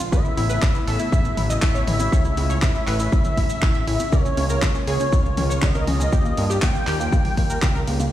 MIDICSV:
0, 0, Header, 1, 6, 480
1, 0, Start_track
1, 0, Tempo, 500000
1, 119, Time_signature, 4, 2, 24, 8
1, 7797, End_track
2, 0, Start_track
2, 0, Title_t, "Analog synth lead"
2, 0, Program_c, 0, 81
2, 0, Note_on_c, 0, 65, 118
2, 118, Note_on_c, 0, 76, 108
2, 133, Note_off_c, 0, 65, 0
2, 743, Note_off_c, 0, 76, 0
2, 839, Note_on_c, 0, 76, 109
2, 1463, Note_off_c, 0, 76, 0
2, 1557, Note_on_c, 0, 76, 104
2, 2422, Note_off_c, 0, 76, 0
2, 2520, Note_on_c, 0, 76, 113
2, 3960, Note_on_c, 0, 73, 113
2, 3974, Note_off_c, 0, 76, 0
2, 4583, Note_off_c, 0, 73, 0
2, 4680, Note_on_c, 0, 73, 107
2, 5400, Note_on_c, 0, 75, 105
2, 5414, Note_off_c, 0, 73, 0
2, 6263, Note_off_c, 0, 75, 0
2, 6359, Note_on_c, 0, 79, 116
2, 7703, Note_off_c, 0, 79, 0
2, 7797, End_track
3, 0, Start_track
3, 0, Title_t, "Synth pluck"
3, 0, Program_c, 1, 84
3, 117, Note_on_c, 1, 71, 96
3, 187, Note_off_c, 1, 71, 0
3, 237, Note_on_c, 1, 64, 65
3, 307, Note_off_c, 1, 64, 0
3, 358, Note_on_c, 1, 64, 68
3, 427, Note_off_c, 1, 64, 0
3, 477, Note_on_c, 1, 71, 99
3, 547, Note_off_c, 1, 71, 0
3, 598, Note_on_c, 1, 64, 62
3, 667, Note_off_c, 1, 64, 0
3, 719, Note_on_c, 1, 64, 68
3, 787, Note_off_c, 1, 64, 0
3, 839, Note_on_c, 1, 69, 95
3, 907, Note_off_c, 1, 69, 0
3, 958, Note_on_c, 1, 64, 69
3, 1027, Note_off_c, 1, 64, 0
3, 1078, Note_on_c, 1, 64, 66
3, 1147, Note_off_c, 1, 64, 0
3, 1319, Note_on_c, 1, 64, 62
3, 1387, Note_off_c, 1, 64, 0
3, 1439, Note_on_c, 1, 75, 90
3, 1507, Note_off_c, 1, 75, 0
3, 1559, Note_on_c, 1, 64, 64
3, 1627, Note_off_c, 1, 64, 0
3, 1678, Note_on_c, 1, 73, 97
3, 1747, Note_off_c, 1, 73, 0
3, 1799, Note_on_c, 1, 64, 68
3, 1867, Note_off_c, 1, 64, 0
3, 1918, Note_on_c, 1, 64, 62
3, 1987, Note_off_c, 1, 64, 0
3, 2038, Note_on_c, 1, 73, 91
3, 2107, Note_off_c, 1, 73, 0
3, 2159, Note_on_c, 1, 64, 66
3, 2228, Note_off_c, 1, 64, 0
3, 2278, Note_on_c, 1, 64, 68
3, 2347, Note_off_c, 1, 64, 0
3, 2399, Note_on_c, 1, 73, 101
3, 2467, Note_off_c, 1, 73, 0
3, 2519, Note_on_c, 1, 64, 65
3, 2587, Note_off_c, 1, 64, 0
3, 2640, Note_on_c, 1, 64, 68
3, 2708, Note_off_c, 1, 64, 0
3, 2759, Note_on_c, 1, 71, 95
3, 2827, Note_off_c, 1, 71, 0
3, 2879, Note_on_c, 1, 64, 66
3, 2947, Note_off_c, 1, 64, 0
3, 3000, Note_on_c, 1, 64, 64
3, 3068, Note_off_c, 1, 64, 0
3, 3239, Note_on_c, 1, 64, 65
3, 3307, Note_off_c, 1, 64, 0
3, 3359, Note_on_c, 1, 76, 92
3, 3428, Note_off_c, 1, 76, 0
3, 3480, Note_on_c, 1, 64, 65
3, 3548, Note_off_c, 1, 64, 0
3, 3600, Note_on_c, 1, 76, 98
3, 3668, Note_off_c, 1, 76, 0
3, 3720, Note_on_c, 1, 64, 66
3, 3788, Note_off_c, 1, 64, 0
3, 3840, Note_on_c, 1, 64, 67
3, 3908, Note_off_c, 1, 64, 0
3, 3960, Note_on_c, 1, 70, 98
3, 4028, Note_off_c, 1, 70, 0
3, 4080, Note_on_c, 1, 61, 66
3, 4148, Note_off_c, 1, 61, 0
3, 4200, Note_on_c, 1, 61, 66
3, 4268, Note_off_c, 1, 61, 0
3, 4320, Note_on_c, 1, 70, 98
3, 4388, Note_off_c, 1, 70, 0
3, 4440, Note_on_c, 1, 61, 60
3, 4508, Note_off_c, 1, 61, 0
3, 4560, Note_on_c, 1, 61, 66
3, 4628, Note_off_c, 1, 61, 0
3, 4680, Note_on_c, 1, 68, 97
3, 4748, Note_off_c, 1, 68, 0
3, 4800, Note_on_c, 1, 61, 67
3, 4868, Note_off_c, 1, 61, 0
3, 4921, Note_on_c, 1, 61, 64
3, 4988, Note_off_c, 1, 61, 0
3, 5160, Note_on_c, 1, 61, 63
3, 5228, Note_off_c, 1, 61, 0
3, 5280, Note_on_c, 1, 73, 90
3, 5348, Note_off_c, 1, 73, 0
3, 5399, Note_on_c, 1, 61, 66
3, 5468, Note_off_c, 1, 61, 0
3, 5519, Note_on_c, 1, 70, 98
3, 5588, Note_off_c, 1, 70, 0
3, 5639, Note_on_c, 1, 61, 64
3, 5708, Note_off_c, 1, 61, 0
3, 5759, Note_on_c, 1, 61, 66
3, 5827, Note_off_c, 1, 61, 0
3, 5880, Note_on_c, 1, 67, 95
3, 5948, Note_off_c, 1, 67, 0
3, 6000, Note_on_c, 1, 58, 69
3, 6068, Note_off_c, 1, 58, 0
3, 6119, Note_on_c, 1, 58, 64
3, 6187, Note_off_c, 1, 58, 0
3, 6239, Note_on_c, 1, 67, 97
3, 6307, Note_off_c, 1, 67, 0
3, 6359, Note_on_c, 1, 58, 63
3, 6428, Note_off_c, 1, 58, 0
3, 6479, Note_on_c, 1, 58, 65
3, 6547, Note_off_c, 1, 58, 0
3, 6599, Note_on_c, 1, 67, 96
3, 6667, Note_off_c, 1, 67, 0
3, 6719, Note_on_c, 1, 58, 66
3, 6787, Note_off_c, 1, 58, 0
3, 6839, Note_on_c, 1, 58, 66
3, 6908, Note_off_c, 1, 58, 0
3, 7080, Note_on_c, 1, 58, 64
3, 7148, Note_off_c, 1, 58, 0
3, 7199, Note_on_c, 1, 70, 90
3, 7268, Note_off_c, 1, 70, 0
3, 7319, Note_on_c, 1, 58, 66
3, 7387, Note_off_c, 1, 58, 0
3, 7440, Note_on_c, 1, 70, 97
3, 7508, Note_off_c, 1, 70, 0
3, 7560, Note_on_c, 1, 58, 65
3, 7628, Note_off_c, 1, 58, 0
3, 7681, Note_on_c, 1, 58, 67
3, 7748, Note_off_c, 1, 58, 0
3, 7797, End_track
4, 0, Start_track
4, 0, Title_t, "Analog synth pad"
4, 0, Program_c, 2, 89
4, 0, Note_on_c, 2, 49, 83
4, 0, Note_on_c, 2, 56, 77
4, 100, Note_off_c, 2, 56, 0
4, 119, Note_on_c, 2, 57, 73
4, 120, Note_on_c, 2, 59, 75
4, 120, Note_on_c, 2, 64, 91
4, 2020, Note_off_c, 2, 59, 0
4, 2040, Note_on_c, 2, 61, 75
4, 3921, Note_off_c, 2, 57, 0
4, 3921, Note_off_c, 2, 64, 0
4, 3940, Note_off_c, 2, 61, 0
4, 3959, Note_on_c, 2, 56, 75
4, 3959, Note_on_c, 2, 58, 76
4, 3960, Note_on_c, 2, 65, 92
4, 5841, Note_off_c, 2, 49, 0
4, 5860, Note_off_c, 2, 56, 0
4, 5879, Note_on_c, 2, 51, 84
4, 5881, Note_on_c, 2, 55, 78
4, 7760, Note_off_c, 2, 58, 0
4, 7761, Note_off_c, 2, 65, 0
4, 7780, Note_off_c, 2, 51, 0
4, 7781, Note_off_c, 2, 55, 0
4, 7797, End_track
5, 0, Start_track
5, 0, Title_t, "Analog synth bass"
5, 0, Program_c, 3, 38
5, 120, Note_on_c, 3, 33, 97
5, 221, Note_off_c, 3, 33, 0
5, 360, Note_on_c, 3, 33, 99
5, 563, Note_off_c, 3, 33, 0
5, 599, Note_on_c, 3, 33, 82
5, 701, Note_off_c, 3, 33, 0
5, 839, Note_on_c, 3, 33, 96
5, 941, Note_off_c, 3, 33, 0
5, 1079, Note_on_c, 3, 33, 80
5, 1283, Note_off_c, 3, 33, 0
5, 1319, Note_on_c, 3, 33, 91
5, 1522, Note_off_c, 3, 33, 0
5, 1559, Note_on_c, 3, 33, 92
5, 1763, Note_off_c, 3, 33, 0
5, 1798, Note_on_c, 3, 33, 90
5, 2002, Note_off_c, 3, 33, 0
5, 2040, Note_on_c, 3, 37, 90
5, 2243, Note_off_c, 3, 37, 0
5, 2279, Note_on_c, 3, 37, 101
5, 2483, Note_off_c, 3, 37, 0
5, 2520, Note_on_c, 3, 33, 93
5, 2621, Note_off_c, 3, 33, 0
5, 2758, Note_on_c, 3, 33, 90
5, 2962, Note_off_c, 3, 33, 0
5, 2999, Note_on_c, 3, 33, 98
5, 3101, Note_off_c, 3, 33, 0
5, 3240, Note_on_c, 3, 33, 98
5, 3443, Note_off_c, 3, 33, 0
5, 3480, Note_on_c, 3, 33, 89
5, 3683, Note_off_c, 3, 33, 0
5, 3720, Note_on_c, 3, 33, 89
5, 3821, Note_off_c, 3, 33, 0
5, 3960, Note_on_c, 3, 37, 102
5, 4061, Note_off_c, 3, 37, 0
5, 4200, Note_on_c, 3, 37, 98
5, 4403, Note_off_c, 3, 37, 0
5, 4440, Note_on_c, 3, 37, 81
5, 4541, Note_off_c, 3, 37, 0
5, 4680, Note_on_c, 3, 37, 93
5, 4781, Note_off_c, 3, 37, 0
5, 4920, Note_on_c, 3, 37, 79
5, 5123, Note_off_c, 3, 37, 0
5, 5160, Note_on_c, 3, 37, 90
5, 5363, Note_off_c, 3, 37, 0
5, 5400, Note_on_c, 3, 37, 97
5, 5603, Note_off_c, 3, 37, 0
5, 5640, Note_on_c, 3, 37, 88
5, 5843, Note_off_c, 3, 37, 0
5, 5880, Note_on_c, 3, 39, 91
5, 6083, Note_off_c, 3, 39, 0
5, 6121, Note_on_c, 3, 43, 102
5, 6324, Note_off_c, 3, 43, 0
5, 6360, Note_on_c, 3, 39, 94
5, 6461, Note_off_c, 3, 39, 0
5, 6600, Note_on_c, 3, 39, 84
5, 6803, Note_off_c, 3, 39, 0
5, 6840, Note_on_c, 3, 39, 96
5, 6942, Note_off_c, 3, 39, 0
5, 7080, Note_on_c, 3, 39, 98
5, 7283, Note_off_c, 3, 39, 0
5, 7320, Note_on_c, 3, 37, 88
5, 7523, Note_off_c, 3, 37, 0
5, 7560, Note_on_c, 3, 37, 86
5, 7763, Note_off_c, 3, 37, 0
5, 7797, End_track
6, 0, Start_track
6, 0, Title_t, "Drums"
6, 119, Note_on_c, 9, 36, 125
6, 119, Note_on_c, 9, 70, 70
6, 215, Note_off_c, 9, 36, 0
6, 215, Note_off_c, 9, 70, 0
6, 239, Note_on_c, 9, 70, 39
6, 335, Note_off_c, 9, 70, 0
6, 358, Note_on_c, 9, 63, 86
6, 360, Note_on_c, 9, 46, 104
6, 454, Note_off_c, 9, 63, 0
6, 456, Note_off_c, 9, 46, 0
6, 478, Note_on_c, 9, 70, 77
6, 574, Note_off_c, 9, 70, 0
6, 595, Note_on_c, 9, 70, 68
6, 597, Note_on_c, 9, 39, 115
6, 599, Note_on_c, 9, 36, 116
6, 691, Note_off_c, 9, 70, 0
6, 693, Note_off_c, 9, 39, 0
6, 695, Note_off_c, 9, 36, 0
6, 717, Note_on_c, 9, 70, 42
6, 813, Note_off_c, 9, 70, 0
6, 840, Note_on_c, 9, 46, 102
6, 936, Note_off_c, 9, 46, 0
6, 951, Note_on_c, 9, 70, 72
6, 1047, Note_off_c, 9, 70, 0
6, 1079, Note_on_c, 9, 36, 119
6, 1085, Note_on_c, 9, 70, 75
6, 1175, Note_off_c, 9, 36, 0
6, 1181, Note_off_c, 9, 70, 0
6, 1197, Note_on_c, 9, 70, 43
6, 1293, Note_off_c, 9, 70, 0
6, 1317, Note_on_c, 9, 47, 92
6, 1319, Note_on_c, 9, 46, 104
6, 1413, Note_off_c, 9, 47, 0
6, 1415, Note_off_c, 9, 46, 0
6, 1441, Note_on_c, 9, 70, 88
6, 1537, Note_off_c, 9, 70, 0
6, 1553, Note_on_c, 9, 70, 65
6, 1556, Note_on_c, 9, 39, 115
6, 1559, Note_on_c, 9, 36, 112
6, 1649, Note_off_c, 9, 70, 0
6, 1652, Note_off_c, 9, 39, 0
6, 1655, Note_off_c, 9, 36, 0
6, 1678, Note_on_c, 9, 63, 68
6, 1682, Note_on_c, 9, 70, 40
6, 1774, Note_off_c, 9, 63, 0
6, 1778, Note_off_c, 9, 70, 0
6, 1798, Note_on_c, 9, 47, 95
6, 1800, Note_on_c, 9, 46, 113
6, 1894, Note_off_c, 9, 47, 0
6, 1896, Note_off_c, 9, 46, 0
6, 1915, Note_on_c, 9, 70, 88
6, 1918, Note_on_c, 9, 63, 83
6, 2011, Note_off_c, 9, 70, 0
6, 2014, Note_off_c, 9, 63, 0
6, 2039, Note_on_c, 9, 36, 121
6, 2044, Note_on_c, 9, 70, 66
6, 2135, Note_off_c, 9, 36, 0
6, 2140, Note_off_c, 9, 70, 0
6, 2157, Note_on_c, 9, 70, 35
6, 2253, Note_off_c, 9, 70, 0
6, 2279, Note_on_c, 9, 46, 99
6, 2279, Note_on_c, 9, 63, 86
6, 2375, Note_off_c, 9, 46, 0
6, 2375, Note_off_c, 9, 63, 0
6, 2399, Note_on_c, 9, 70, 75
6, 2495, Note_off_c, 9, 70, 0
6, 2515, Note_on_c, 9, 39, 117
6, 2519, Note_on_c, 9, 36, 118
6, 2521, Note_on_c, 9, 70, 62
6, 2611, Note_off_c, 9, 39, 0
6, 2615, Note_off_c, 9, 36, 0
6, 2617, Note_off_c, 9, 70, 0
6, 2639, Note_on_c, 9, 70, 37
6, 2735, Note_off_c, 9, 70, 0
6, 2757, Note_on_c, 9, 39, 60
6, 2760, Note_on_c, 9, 46, 104
6, 2853, Note_off_c, 9, 39, 0
6, 2856, Note_off_c, 9, 46, 0
6, 2875, Note_on_c, 9, 70, 71
6, 2971, Note_off_c, 9, 70, 0
6, 2999, Note_on_c, 9, 36, 120
6, 2999, Note_on_c, 9, 70, 69
6, 3095, Note_off_c, 9, 36, 0
6, 3095, Note_off_c, 9, 70, 0
6, 3114, Note_on_c, 9, 70, 40
6, 3119, Note_on_c, 9, 47, 85
6, 3210, Note_off_c, 9, 70, 0
6, 3215, Note_off_c, 9, 47, 0
6, 3240, Note_on_c, 9, 36, 59
6, 3240, Note_on_c, 9, 46, 102
6, 3336, Note_off_c, 9, 36, 0
6, 3336, Note_off_c, 9, 46, 0
6, 3355, Note_on_c, 9, 70, 79
6, 3451, Note_off_c, 9, 70, 0
6, 3476, Note_on_c, 9, 39, 117
6, 3480, Note_on_c, 9, 36, 111
6, 3483, Note_on_c, 9, 70, 61
6, 3572, Note_off_c, 9, 39, 0
6, 3576, Note_off_c, 9, 36, 0
6, 3579, Note_off_c, 9, 70, 0
6, 3592, Note_on_c, 9, 70, 38
6, 3598, Note_on_c, 9, 63, 64
6, 3688, Note_off_c, 9, 70, 0
6, 3694, Note_off_c, 9, 63, 0
6, 3720, Note_on_c, 9, 46, 106
6, 3816, Note_off_c, 9, 46, 0
6, 3835, Note_on_c, 9, 70, 80
6, 3840, Note_on_c, 9, 63, 81
6, 3931, Note_off_c, 9, 70, 0
6, 3936, Note_off_c, 9, 63, 0
6, 3960, Note_on_c, 9, 36, 120
6, 3960, Note_on_c, 9, 70, 64
6, 4056, Note_off_c, 9, 36, 0
6, 4056, Note_off_c, 9, 70, 0
6, 4084, Note_on_c, 9, 70, 37
6, 4180, Note_off_c, 9, 70, 0
6, 4199, Note_on_c, 9, 46, 106
6, 4199, Note_on_c, 9, 63, 87
6, 4295, Note_off_c, 9, 46, 0
6, 4295, Note_off_c, 9, 63, 0
6, 4315, Note_on_c, 9, 70, 75
6, 4411, Note_off_c, 9, 70, 0
6, 4436, Note_on_c, 9, 39, 123
6, 4436, Note_on_c, 9, 70, 61
6, 4440, Note_on_c, 9, 36, 115
6, 4532, Note_off_c, 9, 39, 0
6, 4532, Note_off_c, 9, 70, 0
6, 4536, Note_off_c, 9, 36, 0
6, 4557, Note_on_c, 9, 70, 37
6, 4653, Note_off_c, 9, 70, 0
6, 4679, Note_on_c, 9, 46, 108
6, 4775, Note_off_c, 9, 46, 0
6, 4800, Note_on_c, 9, 70, 75
6, 4896, Note_off_c, 9, 70, 0
6, 4920, Note_on_c, 9, 36, 120
6, 4921, Note_on_c, 9, 70, 69
6, 5016, Note_off_c, 9, 36, 0
6, 5017, Note_off_c, 9, 70, 0
6, 5044, Note_on_c, 9, 70, 36
6, 5140, Note_off_c, 9, 70, 0
6, 5158, Note_on_c, 9, 46, 103
6, 5159, Note_on_c, 9, 47, 91
6, 5254, Note_off_c, 9, 46, 0
6, 5255, Note_off_c, 9, 47, 0
6, 5289, Note_on_c, 9, 70, 81
6, 5385, Note_off_c, 9, 70, 0
6, 5395, Note_on_c, 9, 39, 122
6, 5400, Note_on_c, 9, 36, 115
6, 5400, Note_on_c, 9, 70, 65
6, 5491, Note_off_c, 9, 39, 0
6, 5496, Note_off_c, 9, 36, 0
6, 5496, Note_off_c, 9, 70, 0
6, 5518, Note_on_c, 9, 70, 35
6, 5520, Note_on_c, 9, 63, 68
6, 5614, Note_off_c, 9, 70, 0
6, 5616, Note_off_c, 9, 63, 0
6, 5639, Note_on_c, 9, 46, 107
6, 5639, Note_on_c, 9, 47, 93
6, 5735, Note_off_c, 9, 46, 0
6, 5735, Note_off_c, 9, 47, 0
6, 5759, Note_on_c, 9, 63, 86
6, 5767, Note_on_c, 9, 70, 81
6, 5855, Note_off_c, 9, 63, 0
6, 5863, Note_off_c, 9, 70, 0
6, 5879, Note_on_c, 9, 70, 66
6, 5880, Note_on_c, 9, 36, 119
6, 5975, Note_off_c, 9, 70, 0
6, 5976, Note_off_c, 9, 36, 0
6, 6003, Note_on_c, 9, 70, 43
6, 6099, Note_off_c, 9, 70, 0
6, 6118, Note_on_c, 9, 63, 88
6, 6120, Note_on_c, 9, 46, 107
6, 6214, Note_off_c, 9, 63, 0
6, 6216, Note_off_c, 9, 46, 0
6, 6243, Note_on_c, 9, 70, 75
6, 6339, Note_off_c, 9, 70, 0
6, 6355, Note_on_c, 9, 39, 126
6, 6360, Note_on_c, 9, 36, 118
6, 6362, Note_on_c, 9, 70, 68
6, 6451, Note_off_c, 9, 39, 0
6, 6456, Note_off_c, 9, 36, 0
6, 6458, Note_off_c, 9, 70, 0
6, 6479, Note_on_c, 9, 63, 63
6, 6479, Note_on_c, 9, 70, 36
6, 6575, Note_off_c, 9, 63, 0
6, 6575, Note_off_c, 9, 70, 0
6, 6595, Note_on_c, 9, 39, 63
6, 6598, Note_on_c, 9, 46, 108
6, 6691, Note_off_c, 9, 39, 0
6, 6694, Note_off_c, 9, 46, 0
6, 6727, Note_on_c, 9, 70, 72
6, 6823, Note_off_c, 9, 70, 0
6, 6840, Note_on_c, 9, 36, 118
6, 6842, Note_on_c, 9, 70, 62
6, 6936, Note_off_c, 9, 36, 0
6, 6938, Note_off_c, 9, 70, 0
6, 6958, Note_on_c, 9, 47, 87
6, 6959, Note_on_c, 9, 46, 61
6, 6967, Note_on_c, 9, 70, 37
6, 7054, Note_off_c, 9, 47, 0
6, 7055, Note_off_c, 9, 46, 0
6, 7063, Note_off_c, 9, 70, 0
6, 7079, Note_on_c, 9, 46, 105
6, 7080, Note_on_c, 9, 36, 61
6, 7175, Note_off_c, 9, 46, 0
6, 7176, Note_off_c, 9, 36, 0
6, 7201, Note_on_c, 9, 70, 87
6, 7297, Note_off_c, 9, 70, 0
6, 7316, Note_on_c, 9, 39, 126
6, 7320, Note_on_c, 9, 36, 112
6, 7320, Note_on_c, 9, 70, 62
6, 7412, Note_off_c, 9, 39, 0
6, 7416, Note_off_c, 9, 36, 0
6, 7416, Note_off_c, 9, 70, 0
6, 7438, Note_on_c, 9, 63, 74
6, 7444, Note_on_c, 9, 70, 38
6, 7534, Note_off_c, 9, 63, 0
6, 7540, Note_off_c, 9, 70, 0
6, 7560, Note_on_c, 9, 46, 104
6, 7656, Note_off_c, 9, 46, 0
6, 7678, Note_on_c, 9, 70, 73
6, 7679, Note_on_c, 9, 63, 86
6, 7774, Note_off_c, 9, 70, 0
6, 7775, Note_off_c, 9, 63, 0
6, 7797, End_track
0, 0, End_of_file